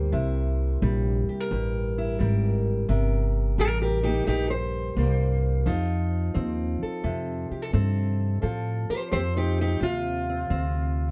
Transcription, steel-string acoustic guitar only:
0.00 0.13 G2 medium
0.00 0.82 G3 medium
0.00 2.90 A#3 soft
0.00 1.05 C5 loud
0.12 1.51 C3 medium
0.12 1.97 E4 medium
0.83 2.18 G3 medium
1.29 1.40 G4 soft
1.40 2.18 A#4 soft
1.51 2.89 G2 medium
1.98 2.87 E4 soft
2.19 2.86 G3 medium
2.19 2.86 A#4 soft
2.89 4.27 C3 medium
2.89 3.58 A#4 soft
3.59 4.96 G3 medium
3.59 3.66 G4 loud
3.59 3.81 A#4 loud
3.82 3.97 G4 medium
3.82 4.05 A#4 medium
4.03 4.97 A#3 soft
4.03 4.26 D#4 medium
4.03 4.26 G4 loud
4.27 5.66 G2 medium
4.27 4.50 D#4 medium
4.27 4.50 G4 loud
4.50 6.58 C5 loud
4.97 5.64 G3 medium
4.97 5.67 A#3 soft
5.66 8.41 F3 medium
5.66 8.40 D#4 medium
6.34 7.73 C4 medium
6.83 7.51 A4 soft
7.04 8.42 C3 medium
7.51 7.62 G4 soft
7.62 7.73 A4 soft
7.73 9.12 C4 medium
7.73 8.40 A4 soft
8.42 11.11 F3 medium
8.42 8.90 A4 medium
8.90 9.01 G4 medium
8.90 9.11 C5 loud
9.11 10.29 C4 medium
9.11 9.19 G4 medium
9.11 9.35 C5 loud
9.37 9.59 D#4 medium
9.37 9.59 G4 loud
9.61 9.83 D#4 medium
9.61 9.83 G4 medium
9.82 11.11 C3 medium
9.82 11.11 F4 loud
10.29 10.50 C4 soft
10.50 11.11 C4 medium

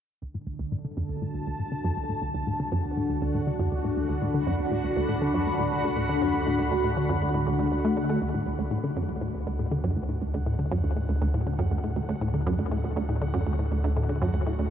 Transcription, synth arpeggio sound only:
0.22 0.30 D2 medium
0.34 0.43 A2 medium
0.47 0.58 D2 medium
0.59 0.64 D2 medium
0.72 0.80 A2 medium
0.85 0.90 D3 medium
0.97 1.05 F#2 medium
1.09 1.18 D2 medium
1.22 1.30 A2 medium
1.34 1.46 D2 medium
1.47 1.52 D2 medium
1.59 1.68 A2 medium
1.72 1.77 D3 medium
1.84 1.93 F#2 medium
1.97 2.05 D2 medium
2.09 2.18 A2 medium
2.22 2.33 D2 medium
2.34 2.40 D2 medium
2.47 2.56 A2 medium
2.60 2.65 D3 medium
2.72 2.80 F#2 medium
2.85 2.93 D2 medium
2.97 3.05 A2 medium
3.10 3.21 D2 medium
3.22 3.27 D2 medium
3.35 3.43 A2 medium
3.47 3.52 D3 medium
3.59 3.68 F#2 medium
3.72 3.80 D2 medium
3.84 3.93 A2 medium
3.97 4.08 D2 medium
4.09 4.14 D2 medium
4.22 4.30 A2 medium
4.34 4.39 D3 medium
4.47 4.55 F#2 loud
4.59 4.68 D2 medium
4.72 4.80 A2 medium
4.84 4.95 D2 medium
4.97 5.02 D2 medium
5.09 5.18 A2 medium
5.22 5.27 D3 medium
5.34 5.43 F#2 medium
5.47 5.55 D2 medium
5.59 5.68 A2 medium
5.72 5.83 D2 medium
5.84 5.89 D2 medium
5.97 6.05 A2 medium
6.09 6.14 D3 medium
6.22 6.30 F#2 medium
6.34 6.43 D2 medium
6.47 6.55 A2 medium
6.59 6.71 D2 medium
6.72 6.77 D2 loud
6.84 6.93 A2 medium
6.97 7.02 D3 medium
7.09 7.18 F#2 medium
7.22 7.30 D2 medium
7.34 7.43 A2 medium
7.47 7.52 D2 medium
7.59 7.68 D2 medium
7.72 7.80 D2 medium
7.85 7.93 A3 medium
7.97 8.09 D3 medium
8.09 8.21 A3 medium
8.22 8.30 D2 medium
8.34 8.43 A2 medium
8.46 8.58 D2 medium
8.59 8.64 D2 medium
8.71 8.80 A2 medium
8.84 8.89 D3 medium
8.96 9.05 F#2 medium
9.09 9.18 D2 medium
9.21 9.30 A2 medium
9.34 9.46 D2 medium
9.47 9.52 D2 loud
9.59 9.68 A2 medium
9.71 9.77 D3 medium
9.84 9.93 F#2 medium
9.96 10.05 D2 medium
10.09 10.18 A2 medium
10.22 10.33 D2 medium
10.34 10.39 D2 loud
10.46 10.55 A2 medium
10.59 10.64 D3 medium
10.72 10.80 F#2 loud
10.84 10.93 D2 medium
10.97 11.05 A2 medium
11.09 11.20 D2 medium
11.22 11.27 D2 loud
11.34 11.43 A2 medium
11.47 11.52 D3 medium
11.59 11.68 F#2 medium
11.71 11.80 D2 medium
11.84 11.93 A2 medium
11.96 12.08 D2 medium
12.09 12.14 D2 medium
12.21 12.30 A2 medium
12.34 12.39 D3 medium
12.47 12.55 F#2 loud
12.59 12.68 D2 medium
12.71 12.80 A2 medium
12.84 12.95 D2 medium
12.96 13.02 D2 loud
13.09 13.18 A2 medium
13.22 13.27 D3 medium
13.34 13.43 F#2 medium
13.47 13.55 D2 medium
13.59 13.68 A2 medium
13.72 13.83 D2 medium
13.84 13.89 D2 loud
13.97 14.05 A2 medium
14.09 14.14 D3 medium
14.22 14.30 F#2 medium
14.34 14.43 D2 medium
14.46 14.55 A2 medium
14.59 14.70 D2 medium

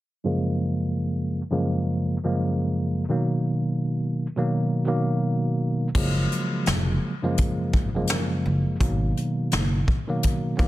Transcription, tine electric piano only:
0.24 1.40 F#2 medium
0.24 1.40 C#3 medium
0.24 1.41 F3 medium
0.24 1.41 G#3 medium
0.24 1.41 A#3 medium
1.51 2.16 F#2 medium
1.51 2.16 C#3 medium
1.51 2.17 F3 medium
1.51 2.17 G#3 medium
1.51 2.17 A#3 medium
2.23 3.03 F#2 medium
2.23 3.04 C#3 medium
2.23 3.04 F3 medium
2.23 3.04 G#3 medium
2.23 3.04 A#3 medium
3.09 4.26 B2 medium
3.09 4.26 D#3 medium
3.09 4.26 F#3 medium
3.09 4.27 A#3 medium
4.36 4.84 B2 medium
4.36 4.84 D#3 medium
4.36 4.84 F#3 medium
4.36 4.85 A#3 medium
4.86 5.87 B2 medium
4.86 5.87 D#3 medium
4.86 5.88 F#3 medium
4.86 5.88 A#3 loud
5.95 7.12 C#3 medium
5.95 7.12 F3 medium
5.95 7.12 F#3 medium
5.95 7.13 G#3 medium
5.95 7.13 A#3 medium
7.22 7.87 F#2 medium
7.22 7.88 C#3 medium
7.22 7.88 F3 medium
7.22 7.88 G#3 medium
7.22 7.89 A#3 medium
7.95 8.75 F#2 medium
7.95 8.75 C#3 medium
7.95 8.75 F3 medium
7.95 8.76 G#3 medium
7.95 8.76 A#3 medium
8.80 9.97 B2 medium
8.80 9.97 D#3 medium
8.80 9.98 F#3 medium
8.80 9.98 A#3 medium
10.07 10.55 B2 medium
10.07 10.55 D#3 medium
10.07 10.56 F#3 medium
10.07 10.56 A#3 loud
10.57 10.68 D#3 medium
10.57 10.68 F#3 medium
10.57 10.68 A#3 loud
10.57 10.68 B3 medium

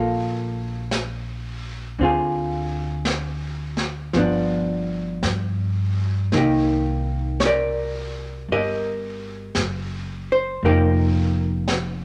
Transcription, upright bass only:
0.00 1.95 A#1 medium
1.98 4.10 D2 medium
4.14 5.19 G1 medium
5.23 6.29 G2 medium
6.33 8.44 C2 medium
8.48 9.52 G1 medium
9.56 10.58 F#1 medium
10.63 12.05 F1 medium

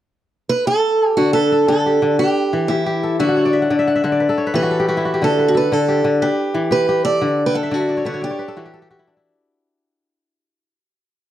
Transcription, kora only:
1.18 1.67 D3 medium
1.35 2.19 B4 medium
1.52 2.84 A4 medium
1.68 2.01 D3 medium
1.86 2.69 G4 medium
2.02 2.24 D3 medium
2.19 3.42 B4 medium
2.53 3.25 E3 medium
2.70 2.86 G4 medium
2.86 3.35 G4 medium
3.03 4.29 A4 medium
3.19 3.69 D3 medium
3.19 3.52 E5 medium
3.29 3.62 F#5 medium
3.37 3.76 C#5 medium
3.45 3.70 D5 medium
3.53 3.78 E5 medium
3.62 3.87 F#5 medium
3.70 4.03 D3 medium
3.70 4.12 D5 medium
3.79 3.95 E5 medium
3.87 4.04 F#5 medium
3.95 4.99 E5 medium
4.04 4.25 D3 medium
4.04 4.60 F#5 medium
4.12 4.44 D5 medium
4.20 4.46 B4 medium
4.29 4.71 A4 medium
4.38 5.28 C#5 medium
4.47 5.38 B4 medium
4.54 5.26 E3 medium
4.54 4.79 G4 medium
4.63 4.86 F#4 medium
4.71 5.54 A4 medium
4.80 4.88 G4 medium
4.88 5.05 F#4 medium
4.88 5.13 G4 medium
4.97 6.54 E4 medium
5.05 5.94 F#4 medium
5.14 5.88 G4 medium
5.22 5.71 D3 medium
5.39 6.21 B4 medium
5.55 6.86 A4 medium
5.72 6.03 D3 medium
5.88 6.70 G4 medium
6.04 6.26 D3 medium
6.22 7.45 B4 medium
6.54 7.27 E3 medium
6.71 6.88 G4 medium
6.89 7.61 G4 medium
7.05 8.37 A4 soft
7.21 7.70 D3 medium
7.46 8.40 G5 medium
7.55 8.51 F#5 medium
7.63 7.79 E5 medium
7.71 8.04 D3 medium
7.71 7.88 D5 medium
7.80 8.83 E5 medium
7.89 8.20 D5 medium
7.97 8.13 C#5 medium
8.05 8.28 D3 medium
8.05 8.38 B4 medium
8.14 8.30 C#5 medium
8.22 9.32 D5 medium
8.30 9.13 C#5 medium
8.39 9.62 B4 medium
8.48 8.73 A4 medium
8.56 9.29 E3 medium
8.56 8.88 F#4 medium
8.66 8.81 G4 medium
8.73 10.05 A4 medium
8.82 8.90 G4 medium
8.90 10.37 F#4 medium
8.90 10.32 G4 medium
8.99 9.16 E4 medium
9.07 10.75 D4 medium
9.17 10.73 E4 medium

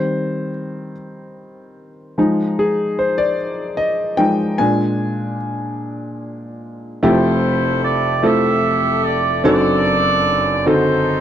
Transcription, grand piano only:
0.00 0.92 D#3 soft
0.00 0.92 G3 soft
0.00 0.92 C4 medium
0.00 0.50 C5 medium
2.18 3.35 F3 soft
2.18 3.35 G#3 soft
2.18 3.35 D#4 medium
2.59 2.96 G#4 medium
2.99 3.19 C5 medium
3.18 3.75 D5 medium
3.77 4.20 D#5 medium
4.17 4.55 F3 soft
4.17 4.55 G#3 soft
4.17 4.55 D#4 soft
4.17 4.27 G5 medium
4.58 6.98 A#2 medium
4.58 6.98 G#3 soft
4.58 6.98 D4 medium
4.58 5.36 G#5 medium
7.03 9.41 F1 medium
7.03 9.41 F2 medium
7.03 7.84 F3 medium
7.03 7.84 A3 medium
7.03 7.84 C4 medium
7.03 7.84 E4 medium
7.03 7.84 G4 medium
8.23 9.04 A3 medium
8.23 9.04 C4 medium
8.23 9.05 E4 medium
8.23 9.04 F4 medium
8.23 9.05 A4 medium
9.44 11.21 F#1 medium
9.44 11.21 F#2 medium
9.44 10.25 C4 medium
9.44 10.25 D4 medium
9.44 10.26 D#4 medium
9.44 10.26 F#4 medium
9.44 10.26 A4 loud
10.66 11.21 D3 medium
10.66 11.21 C4 medium
10.66 11.21 D#4 medium
10.66 11.21 F#4 medium
10.66 11.21 A4 medium

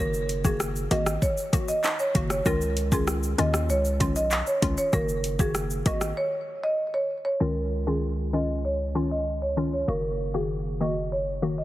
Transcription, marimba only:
0.45 0.64 G#4 medium
0.91 1.10 D#5 medium
1.22 1.32 C#5 medium
1.68 1.78 D#5 medium
2.00 2.09 C#5 medium
2.31 2.40 C#5 medium
2.46 2.56 A#4 loud
2.92 3.12 G#4 medium
3.39 3.58 D#5 medium
3.70 3.79 C#5 medium
4.16 4.26 D#5 medium
4.47 4.57 C#5 medium
4.78 4.87 C#5 medium
4.93 5.03 A#4 loud
5.40 5.59 G#4 medium
5.86 6.05 D#5 medium
6.17 6.27 C#5 medium
6.64 6.73 D#5 medium
6.94 7.04 C#5 medium
7.25 7.35 C#5 medium
7.40 7.50 A#4 medium
7.87 8.06 G#4 medium
8.34 8.53 D#5 medium
8.65 8.74 C#5 medium
9.11 9.21 D#5 medium
9.42 9.51 C#5 medium
9.73 9.83 C#5 medium
9.88 9.98 A#4 loud
10.35 10.54 G#4 medium
10.81 11.00 D#5 medium
11.12 11.22 C#5 medium
11.58 11.64 D#5 medium

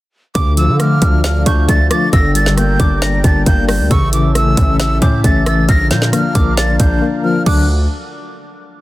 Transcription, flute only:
0.35 0.56 D6 loud
0.57 0.78 E6 medium
0.80 1.22 F6 medium
1.24 1.45 F6 medium
1.46 1.67 G6 medium
1.69 1.90 A6 medium
1.91 2.12 A6 medium
2.13 2.34 A#6 loud
2.35 2.56 A6 medium
2.57 2.99 G6 medium
3.01 3.23 A#6 medium
3.24 3.45 A6 medium
3.46 3.67 G6 medium
3.69 3.90 G6 medium
3.91 4.12 C#6 loud
4.13 4.34 D6 medium
4.35 4.77 E6 loud
4.80 5.01 E6 medium
5.02 5.23 G6 medium
5.24 5.45 A6 medium
5.47 5.68 A6 medium
5.69 5.90 A#6 loud
5.91 6.12 G6 medium
6.13 6.55 F6 medium
6.57 6.78 A6 medium
6.79 7.04 G6 medium
7.24 7.45 F6 medium
7.46 7.67 F#6 medium

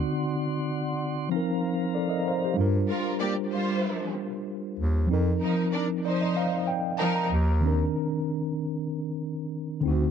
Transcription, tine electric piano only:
0.00 1.25 D3 medium
0.00 1.27 C4 medium
0.00 1.28 D#4 medium
0.00 1.29 F#4 medium
1.29 2.54 F3 medium
1.29 2.55 C4 medium
1.34 2.56 D#4 medium
1.34 1.96 A#4 medium
1.95 2.11 A4 medium
1.95 2.11 D5 medium
2.09 2.24 A#4 medium
2.09 2.24 D#5 medium
2.28 2.43 C5 medium
2.28 2.43 F5 medium
2.44 2.74 G4 medium
2.44 2.74 C5 medium
2.54 5.04 G3 medium
2.54 5.05 D4 medium
2.59 5.07 F4 medium
2.59 5.08 A#4 medium
5.06 7.25 F3 medium
5.06 7.26 C4 medium
5.11 7.28 D#4 medium
5.11 7.29 A#4 medium
6.05 6.21 D5 medium
6.21 6.35 D#5 medium
6.37 6.66 F5 medium
6.67 6.97 G5 medium
6.99 7.15 A5 medium
7.16 7.59 A#5 medium
7.60 9.79 D#3 medium
7.60 9.80 C4 medium
7.65 9.81 D4 medium
7.65 9.82 A#4 medium
9.81 10.11 D3 medium
9.81 10.11 C4 medium
9.85 10.11 D#4 medium
9.85 10.11 F#4 medium

